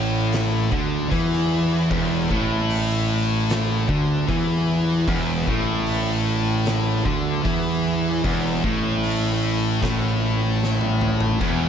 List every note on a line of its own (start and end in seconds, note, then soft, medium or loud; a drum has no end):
0.00 0.68 A1 loud
0.00 0.71 A2 loud
0.32 snare loud
0.32 open hi-hat medium
0.71 1.09 D2 loud
0.71 1.11 D3 loud
0.71 kick loud
1.11 1.87 E2 loud
1.11 1.90 E3 loud
1.11 kick loud
1.11 open hi-hat medium
1.33 snare soft
1.90 2.28 E1 loud
1.90 2.29 E2 loud
1.90 kick loud
1.90 open hi-hat medium
2.29 3.85 A1 medium
2.29 3.87 A2 loud
2.29 kick loud
2.70 open hi-hat medium
3.49 snare loud
3.49 open hi-hat medium
3.88 4.26 D2 loud
3.88 4.27 D3 loud
3.88 kick loud
4.28 5.04 E2 loud
4.28 5.07 E3 loud
4.28 kick loud
4.28 open hi-hat medium
5.07 5.44 E1 medium
5.07 5.46 E2 loud
5.07 kick loud
5.07 open hi-hat medium
5.47 7.02 A1 loud
5.47 7.04 A2 loud
5.47 kick loud
5.87 open hi-hat medium
6.65 snare loud
6.65 open hi-hat medium
7.05 7.42 D2 loud
7.05 7.44 D3 loud
7.05 kick loud
7.44 8.20 E2 loud
7.44 8.22 E3 loud
7.44 kick loud
7.44 open hi-hat medium
8.24 8.61 E1 loud
8.24 8.63 E2 loud
8.24 kick loud
8.24 open hi-hat medium
8.64 9.78 A1 medium
8.64 9.81 A2 loud
8.64 kick loud
9.03 open hi-hat medium
9.82 11.36 A1 medium
9.82 11.39 A2 loud
9.82 kick loud
9.82 snare loud
9.82 open hi-hat medium
10.64 snare medium
10.81 high tom medium
11.01 mid tom medium
11.20 floor tom loud
11.40 11.69 E1 loud
11.40 11.69 E2 loud
11.40 kick loud
11.40 crash loud